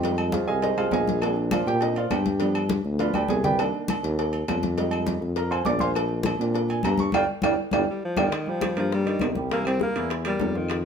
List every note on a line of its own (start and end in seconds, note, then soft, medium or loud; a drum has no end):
0.00 0.43 F2 loud
0.00 0.76 G3 medium
0.00 0.76 G#3 medium
0.00 0.61 D#4 medium
0.00 0.15 G4 medium
0.00 0.15 C5 medium
0.00 0.15 D#5 medium
0.00 0.15 G5 loud
0.00 high conga soft
0.00 low agogo medium
0.05 cowbell loud
0.17 high conga soft
0.17 low agogo loud
0.17 claves medium
0.32 0.48 F4 medium
0.32 0.46 G#4 medium
0.32 0.48 C5 medium
0.32 0.47 F5 medium
0.32 cowbell medium
0.32 high conga loud
0.32 low timbale medium
0.48 0.76 C2 loud
0.48 0.61 G#4 medium
0.48 0.61 D#5 medium
0.48 0.63 F5 medium
0.48 0.62 G#5 loud
0.48 high conga soft
0.62 0.77 D#4 medium
0.62 0.77 G#4 medium
0.62 0.77 C5 medium
0.62 0.77 D#5 medium
0.62 cowbell medium
0.62 high conga soft
0.62 low agogo medium
0.77 0.92 C2 medium
0.77 0.91 G3 soft
0.77 0.91 G#3 soft
0.77 0.91 D#4 medium
0.77 0.93 F4 medium
0.77 0.92 G#4 medium
0.77 0.92 C5 medium
0.77 0.92 F5 loud
0.77 high conga soft
0.77 low agogo medium
0.77 claves medium
0.91 1.61 A#1 loud
0.91 1.34 G#4 medium
0.91 1.20 D#5 medium
0.91 1.34 F5 medium
0.91 1.34 G#5 loud
0.91 cowbell medium
0.91 high conga medium
0.91 low timbale loud
1.07 cowbell medium
1.07 high conga medium
1.21 1.64 A#3 medium
1.21 1.64 C4 medium
1.21 1.65 D4 medium
1.21 cowbell loud
1.21 high conga soft
1.21 low agogo loud
1.21 claves medium
1.36 high conga soft
1.51 1.66 F4 medium
1.51 1.66 C5 medium
1.51 1.67 D5 medium
1.51 1.66 F5 medium
1.51 cowbell medium
1.51 high conga loud
1.51 low timbale medium
1.51 low agogo loud
1.51 claves medium
1.66 2.08 A#2 loud
1.66 1.81 G4 medium
1.66 1.81 G5 loud
1.66 cowbell medium
1.66 high conga soft
1.81 1.95 A#3 soft
1.81 1.95 C4 soft
1.81 1.95 D4 medium
1.81 1.96 D#4 medium
1.81 1.96 D#5 medium
1.81 cowbell loud
1.81 high conga soft
1.81 low agogo medium
1.95 2.11 F4 medium
1.95 2.11 C5 medium
1.95 2.11 D5 medium
1.95 2.11 F5 medium
1.95 high conga soft
1.95 low agogo medium
2.10 2.79 G2 loud
2.10 2.53 G4 medium
2.10 2.53 G5 medium
2.10 cowbell medium
2.10 high conga medium
2.10 low timbale medium
2.10 low agogo loud
2.10 claves medium
2.26 cowbell medium
2.26 high conga medium
2.40 2.60 F3 medium
2.40 2.60 B3 medium
2.40 2.61 D4 medium
2.40 cowbell loud
2.40 high conga soft
2.40 low agogo medium
2.55 high conga soft
2.55 low agogo loud
2.55 claves medium
2.69 cowbell medium
2.69 high conga loud
2.69 low timbale medium
2.84 3.12 D2 loud
2.84 high conga soft
2.99 3.13 F3 soft
2.99 3.13 B3 soft
2.99 3.13 D4 soft
2.99 3.14 F4 medium
2.99 3.13 B4 medium
2.99 3.13 D5 medium
2.99 3.14 F5 medium
2.99 cowbell loud
2.99 high conga soft
2.99 low agogo medium
3.14 3.28 D2 medium
3.14 3.29 G4 medium
3.14 3.29 B4 medium
3.14 3.29 D5 medium
3.14 3.29 G5 medium
3.14 high conga medium
3.14 low agogo loud
3.14 claves medium
3.28 3.72 C2 loud
3.28 3.44 G#4 medium
3.28 3.44 G#5 loud
3.28 cowbell medium
3.28 high conga loud
3.28 low timbale medium
3.44 3.59 G4 medium
3.44 3.59 B4 medium
3.44 3.59 D5 medium
3.44 3.58 G5 loud
3.44 cowbell medium
3.44 low conga loud
3.59 4.01 D#3 medium
3.59 4.01 A#3 medium
3.59 4.01 D4 medium
3.59 cowbell loud
3.59 high conga soft
3.59 low agogo loud
3.59 claves medium
3.74 high conga soft
3.88 cowbell medium
3.88 high conga loud
3.88 low timbale medium
3.88 low agogo loud
3.88 claves medium
4.03 4.44 D#2 loud
4.03 cowbell medium
4.03 high conga soft
4.19 cowbell loud
4.19 high conga soft
4.19 low agogo medium
4.33 high conga soft
4.33 low agogo medium
4.48 5.16 F2 loud
4.48 cowbell medium
4.48 high conga medium
4.48 low timbale medium
4.48 low agogo loud
4.48 claves medium
4.63 cowbell medium
4.63 high conga medium
4.77 5.19 G3 medium
4.77 5.19 G#3 medium
4.77 5.20 D#4 medium
4.77 cowbell loud
4.77 high conga soft
4.77 low agogo medium
4.91 high conga soft
4.91 low agogo loud
4.91 claves medium
5.07 cowbell medium
5.07 high conga loud
5.07 low timbale medium
5.21 5.62 F2 loud
5.21 high conga soft
5.36 5.51 A#4 medium
5.36 5.51 A#5 medium
5.36 cowbell loud
5.36 high conga soft
5.36 low agogo medium
5.51 5.65 C5 medium
5.51 5.65 F5 medium
5.51 5.66 G#5 medium
5.51 5.65 C6 medium
5.51 high conga soft
5.51 low agogo loud
5.51 claves medium
5.65 6.34 A#1 loud
5.65 5.80 D5 medium
5.65 5.80 D6 loud
5.65 cowbell medium
5.65 high conga medium
5.65 low timbale medium
5.79 5.89 C5 medium
5.79 5.90 F5 medium
5.79 5.90 G#5 medium
5.79 5.89 C6 loud
5.79 cowbell medium
5.79 high conga medium
5.94 cowbell loud
5.94 high conga soft
5.94 low agogo loud
5.94 claves medium
6.09 high conga soft
6.23 cowbell medium
6.23 high conga loud
6.23 low timbale medium
6.23 low agogo loud
6.23 claves medium
6.39 6.81 A#2 loud
6.39 7.10 A#3 medium
6.39 7.10 C4 soft
6.39 7.10 D4 medium
6.39 cowbell medium
6.39 high conga soft
6.54 cowbell loud
6.54 high conga soft
6.54 low agogo medium
6.69 6.84 G#5 loud
6.69 high conga soft
6.69 low agogo medium
6.83 7.12 G2 loud
6.83 6.99 A#5 loud
6.83 cowbell medium
6.83 high conga medium
6.83 low timbale medium
6.83 low agogo loud
6.83 claves medium
6.98 7.14 C#6 loud
6.98 cowbell medium
6.98 high conga medium
7.12 7.25 G1 medium
7.12 7.24 D5 loud
7.12 7.24 F5 loud
7.12 7.24 G5 loud
7.12 cowbell loud
7.12 high conga loud
7.12 high timbale loud
7.12 claves loud
7.42 7.55 G1 medium
7.42 7.53 D5 loud
7.42 7.53 F5 loud
7.42 7.53 G5 medium
7.42 cowbell loud
7.42 high conga loud
7.42 high timbale loud
7.42 claves loud
7.71 7.84 G1 loud
7.71 7.83 D5 loud
7.71 7.83 F5 medium
7.71 7.83 G5 medium
7.71 cowbell medium
7.71 high conga medium
7.71 high timbale loud
7.71 claves loud
7.90 8.03 G3 medium
8.05 8.20 F3 medium
8.17 8.28 G1 loud
8.17 8.51 D#3 medium
8.17 8.27 D5 loud
8.17 8.27 F5 medium
8.17 8.27 G5 loud
8.17 cowbell loud
8.17 high conga loud
8.17 high timbale loud
8.17 claves loud
8.32 high bongo medium
8.32 high conga soft
8.32 high timbale medium
8.32 claves medium
8.46 8.78 F3 medium
8.46 8.72 G3 medium
8.46 8.72 G4 medium
8.46 high conga soft
8.61 high bongo medium
8.61 high conga loud
8.61 high timbale medium
8.61 low timbale medium
8.61 claves medium
8.75 9.18 G2 loud
8.75 8.92 F3 medium
8.75 9.01 A#3 medium
8.75 9.01 A#4 medium
8.75 high bongo soft
8.75 high conga soft
8.75 high timbale medium
8.91 9.34 G3 medium
8.91 high bongo medium
8.91 high conga soft
9.05 9.30 D#3 medium
9.05 9.31 D#4 medium
9.05 high bongo soft
9.05 high conga soft
9.05 high timbale medium
9.19 9.90 C2 loud
9.19 high bongo soft
9.19 low bongo medium
9.19 high conga medium
9.19 high timbale medium
9.19 low timbale medium
9.19 claves medium
9.35 9.48 G3 medium
9.35 9.49 G4 medium
9.35 high bongo soft
9.35 high conga medium
9.50 9.63 E3 medium
9.50 9.66 A#3 loud
9.50 9.63 E4 medium
9.50 high bongo medium
9.50 high conga soft
9.50 high timbale medium
9.65 9.90 G3 medium
9.65 9.80 C4 medium
9.65 9.90 G4 medium
9.65 high conga soft
9.65 high timbale medium
9.65 claves medium
9.80 10.09 A#3 loud
9.80 high bongo medium
9.80 high conga medium
9.80 low timbale medium
9.95 10.37 E2 medium
9.95 10.20 E3 medium
9.95 10.20 E4 medium
9.95 high bongo soft
9.95 high timbale medium
10.09 high bongo medium
10.09 high conga soft
10.09 high timbale medium
10.25 10.58 G3 medium
10.25 10.50 A#3 medium
10.25 10.50 A#4 medium
10.25 high bongo soft
10.25 high conga soft
10.25 high timbale medium
10.25 claves medium
10.40 10.85 F2 medium
10.40 high bongo soft
10.40 low bongo medium
10.40 high conga medium
10.40 low timbale medium
10.55 10.80 D#3 medium
10.55 10.79 F4 medium
10.55 10.80 F5 medium
10.55 high bongo soft
10.55 high conga soft
10.69 high bongo medium
10.69 high conga soft
10.69 high timbale medium
10.69 claves medium
10.80 10.85 D#3 medium